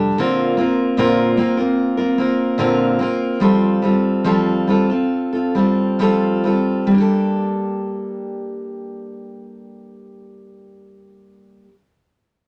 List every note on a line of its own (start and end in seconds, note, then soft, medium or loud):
0.00 0.12 F1 medium
0.00 0.18 G3 medium
0.00 0.19 D4 medium
0.00 0.19 G4 medium
0.00 0.20 A4 medium
0.18 0.58 A#2 medium
0.18 0.58 D3 medium
0.18 0.56 A#3 medium
0.18 0.57 C4 medium
0.18 0.58 F4 medium
0.18 0.59 A#4 medium
0.57 0.97 A#3 medium
0.57 0.97 C4 medium
0.57 0.98 F4 medium
0.57 0.98 A#4 medium
0.97 1.37 A#2 medium
0.97 1.38 D3 medium
0.97 1.36 A#3 medium
0.97 1.38 C4 medium
0.97 1.38 F4 medium
0.97 1.38 A#4 medium
1.37 1.58 A#3 medium
1.37 1.58 C4 medium
1.37 1.57 F4 medium
1.37 1.56 A#4 medium
1.57 1.99 A#3 soft
1.57 1.98 C4 soft
1.57 1.97 F4 soft
1.57 1.96 A#4 medium
1.97 2.17 A#3 soft
1.97 2.18 C4 soft
1.97 2.18 F4 soft
1.97 2.18 A#4 soft
2.18 2.58 A#3 medium
2.18 2.58 C4 medium
2.18 2.59 F4 medium
2.18 2.59 A#4 medium
2.58 2.99 A#2 medium
2.58 3.00 D3 medium
2.58 2.98 A#3 medium
2.58 2.99 C4 medium
2.58 3.00 F4 medium
2.58 3.01 A#4 medium
2.99 3.41 A#3 medium
2.99 3.40 C4 medium
2.99 3.41 F4 medium
2.99 3.42 A#4 medium
3.40 3.83 F3 medium
3.40 3.81 G3 medium
3.40 3.82 C4 medium
3.40 3.84 F4 medium
3.40 3.84 A4 medium
3.82 4.24 G3 medium
3.82 4.25 C4 medium
3.82 4.25 F4 medium
3.82 4.26 A4 medium
4.24 4.68 F3 medium
4.24 4.66 G3 medium
4.24 4.67 C4 medium
4.24 4.69 F4 medium
4.24 4.69 A4 medium
4.67 4.90 G3 soft
4.67 4.90 C4 medium
4.67 4.90 F4 medium
4.67 4.88 A4 medium
4.90 5.35 C4 soft
4.90 5.34 F4 soft
4.90 5.31 A4 soft
5.33 5.55 C4 soft
5.33 5.56 F4 soft
5.33 5.55 A4 soft
5.55 5.98 G3 medium
5.55 5.99 C4 medium
5.55 6.00 F4 medium
5.55 6.01 A4 medium
5.99 6.45 F3 medium
5.99 6.42 G3 medium
5.99 6.44 C4 medium
5.99 6.45 F4 medium
5.99 6.46 A4 medium
6.44 6.86 G3 soft
6.44 6.92 C4 medium
6.44 6.92 F4 medium
6.44 6.93 A4 medium
6.87 11.63 G3 medium
6.91 11.68 A#3 medium
6.91 11.71 D4 medium
6.98 11.74 G4 medium
6.98 11.77 A4 medium